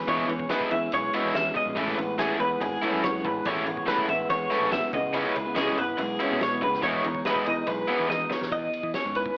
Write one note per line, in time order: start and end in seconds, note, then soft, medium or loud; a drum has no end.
0.00 0.72 E3 medium
0.00 0.28 C#4 medium
0.07 0.23 E2 medium
0.07 1.77 E2 medium
0.07 0.29 E3 medium
0.07 0.28 G#3 medium
0.07 0.50 G#3 soft
0.07 0.28 B3 medium
0.07 0.27 E4 medium
0.07 0.50 C#5 medium
0.07 kick loud
0.07 ride medium
0.19 kick medium
0.28 0.44 E2 medium
0.28 0.72 C#4 medium
0.28 muted overdriven electric guitar stroke soft
0.28 ride medium
0.40 kick medium
0.49 0.71 E3 medium
0.49 0.93 G#3 medium
0.49 0.71 G#3 medium
0.49 0.71 B3 medium
0.49 0.70 E4 medium
0.49 0.71 B4 medium
0.49 snare medium
0.49 ride medium
0.61 kick medium
0.71 0.87 E2 medium
0.71 2.41 E3 medium
0.71 1.35 C#4 soft
0.71 0.92 E5 medium
0.71 muted overdriven electric guitar stroke soft
0.71 ride medium
0.92 1.08 B1 medium
0.92 1.57 G#3 medium
0.92 1.35 C#5 medium
0.92 muted overdriven electric guitar stroke soft
0.92 ride medium
1.13 1.76 B2 medium
1.13 1.34 E3 medium
1.13 1.35 G#3 medium
1.13 1.35 B3 medium
1.13 1.35 E4 loud
1.13 ride medium
1.24 1.32 E2 medium
1.35 1.50 E2 medium
1.35 2.00 C#4 soft
1.35 1.56 E5 medium
1.35 muted overdriven electric guitar stroke soft
1.35 snare medium
1.35 ride medium
1.55 1.78 G#3 medium
1.55 1.78 D#5 medium
1.55 muted overdriven electric guitar stroke soft
1.55 kick medium
1.55 ride medium
1.66 1.74 A#1 medium
1.76 1.93 A1 medium
1.76 3.43 A2 medium
1.76 1.96 E3 medium
1.76 2.20 G#3 medium
1.76 1.97 A3 medium
1.76 1.96 C#4 medium
1.76 1.96 E4 medium
1.76 2.19 B4 medium
1.76 kick medium
1.76 ride medium
1.88 kick medium
1.88 snare soft
1.97 2.30 A1 medium
1.97 2.42 B3 medium
1.97 muted overdriven electric guitar stroke soft
1.97 ride medium
2.19 2.40 E3 medium
2.19 2.62 G#3 soft
2.19 2.40 A3 medium
2.19 2.39 C#4 medium
2.19 2.39 E4 medium
2.19 2.40 G#4 medium
2.19 snare medium
2.19 ride medium
2.40 2.56 E2 medium
2.40 2.82 E3 medium
2.40 3.02 B3 medium
2.40 2.62 B4 medium
2.40 muted overdriven electric guitar stroke soft
2.40 ride medium
2.61 2.77 G#1 medium
2.61 3.25 G#3 medium
2.61 3.03 G#4 medium
2.61 muted overdriven electric guitar stroke soft
2.61 ride medium
2.82 4.10 E3 medium
2.82 3.03 E3 medium
2.82 3.04 A3 medium
2.82 3.04 C#4 medium
2.82 3.03 E4 loud
2.82 ride medium
2.93 3.26 F#2 medium
3.03 3.68 B3 medium
3.03 3.25 C#5 medium
3.03 muted overdriven electric guitar stroke soft
3.03 snare loud
3.03 ride medium
3.24 3.40 A1 medium
3.24 3.47 G#3 medium
3.24 3.46 B4 medium
3.24 muted overdriven electric guitar stroke soft
3.24 kick medium
3.24 ride soft
3.45 3.61 A1 medium
3.45 4.51 A2 medium
3.45 3.66 E3 medium
3.45 3.89 G#3 soft
3.45 3.65 A3 medium
3.45 3.65 C#4 medium
3.45 3.65 E4 medium
3.45 3.88 C#5 medium
3.45 kick loud
3.45 ride medium
3.56 kick medium
3.66 3.83 A1 medium
3.66 4.11 B3 soft
3.66 muted overdriven electric guitar stroke soft
3.66 ride medium
3.77 kick medium
3.86 4.08 E3 medium
3.86 4.31 G#3 soft
3.86 4.08 A3 medium
3.86 4.08 C#4 medium
3.86 4.08 E4 medium
3.86 4.09 B4 medium
3.86 snare loud
3.86 ride medium
3.98 kick medium
4.08 4.24 A1 medium
4.08 5.55 E3 medium
4.08 4.94 B3 medium
4.08 4.30 E5 medium
4.08 muted overdriven electric guitar stroke soft
4.08 ride medium
4.29 4.45 E2 medium
4.29 4.93 G#3 medium
4.29 4.72 C#5 medium
4.29 muted overdriven electric guitar stroke soft
4.29 ride medium
4.50 4.73 A2 medium
4.50 4.71 E3 medium
4.50 4.71 A3 medium
4.50 4.71 C#4 medium
4.50 4.72 E4 medium
4.50 snare soft
4.50 ride medium
4.60 4.68 A1 medium
4.70 4.80 A1 medium
4.70 4.92 B2 medium
4.70 4.93 E5 medium
4.70 muted overdriven electric guitar stroke soft
4.70 snare loud
4.70 ride medium
4.93 5.25 C#2 medium
4.93 5.56 C#3 medium
4.93 5.35 B3 medium
4.93 5.15 D#5 medium
4.93 muted overdriven electric guitar stroke soft
4.93 kick medium
4.93 ride medium
5.13 5.35 C#3 medium
5.13 5.35 G#3 medium
5.13 5.35 C#4 medium
5.13 5.56 E4 medium
5.13 5.34 E4 medium
5.13 5.57 B4 medium
5.13 ride medium
5.35 5.68 C#2 medium
5.35 5.46 G#3 medium
5.35 muted overdriven electric guitar stroke soft
5.35 ride medium
5.46 5.77 B3 soft
5.55 5.77 C#3 medium
5.55 7.46 E3 medium
5.55 5.77 G#3 medium
5.55 5.77 C#4 medium
5.55 6.21 E4 medium
5.55 5.77 E4 medium
5.55 5.79 G#4 medium
5.55 snare loud
5.55 ride medium
5.78 5.93 G#1 medium
5.78 6.41 B3 medium
5.78 6.00 B4 medium
5.78 muted overdriven electric guitar stroke soft
5.78 ride medium
5.98 6.15 B1 medium
5.98 6.59 G#2 medium
5.98 6.41 G#4 medium
5.98 muted overdriven electric guitar stroke soft
5.98 ride medium
6.20 6.39 C#3 medium
6.20 6.40 G#3 medium
6.20 6.40 C#4 medium
6.20 6.40 E4 medium
6.20 7.04 E4 medium
6.20 ride medium
6.32 6.64 B2 medium
6.40 6.52 G#3 soft
6.40 6.63 C#5 medium
6.40 muted overdriven electric guitar stroke soft
6.40 snare loud
6.40 ride medium
6.52 6.62 B3 soft
6.62 6.78 C#2 medium
6.62 6.81 C#3 medium
6.62 6.81 B3 medium
6.62 6.83 B4 medium
6.62 muted overdriven electric guitar stroke medium
6.62 kick medium
6.62 ride medium
6.73 snare soft
6.82 6.99 E2 medium
6.82 8.51 E2 medium
6.82 7.04 E3 medium
6.82 7.04 G#3 medium
6.82 7.24 G#3 soft
6.82 7.04 B3 medium
6.82 7.04 E4 loud
6.82 7.25 C#5 medium
6.82 kick loud
6.82 ride medium
6.94 kick medium
7.04 7.21 E2 medium
7.04 7.46 D#4 medium
7.04 muted overdriven electric guitar stroke soft
7.04 ride medium
7.14 kick medium
7.25 7.47 E3 medium
7.25 7.67 G#3 medium
7.25 7.46 G#3 medium
7.25 7.46 B3 medium
7.25 7.45 E4 medium
7.25 7.46 B4 medium
7.25 snare loud
7.25 ride medium
7.36 kick medium
7.46 7.63 E2 medium
7.46 9.13 E3 medium
7.46 8.09 D#4 soft
7.46 7.68 D#5 medium
7.46 muted overdriven electric guitar stroke soft
7.46 ride medium
7.67 7.83 B1 medium
7.67 8.32 G#3 medium
7.67 8.10 B4 medium
7.67 muted overdriven electric guitar stroke soft
7.67 ride medium
7.88 8.51 B2 medium
7.88 8.08 E3 medium
7.88 8.08 G#3 medium
7.88 8.09 B3 medium
7.88 8.09 E4 medium
7.88 ride soft
7.99 8.07 E2 medium
8.09 8.25 E2 medium
8.09 8.50 D#4 medium
8.09 8.32 D#5 medium
8.09 muted overdriven electric guitar stroke soft
8.09 snare medium
8.30 8.52 C#5 medium
8.30 muted overdriven electric guitar stroke soft
8.30 snare medium
8.41 8.49 E2 medium
8.41 snare medium
8.52 8.67 E2 medium
8.52 9.37 E2 medium
8.52 8.94 D#5 medium
8.52 kick medium
8.52 ride medium
8.73 ride medium
8.83 8.91 E3 medium
8.83 kick medium
8.93 9.37 C#4 soft
8.93 9.16 C#5 medium
8.93 snare medium
8.93 ride medium
9.05 9.29 G#2 medium
9.14 9.37 E3 medium
9.14 9.37 B4 medium
9.14 ride medium
9.26 kick medium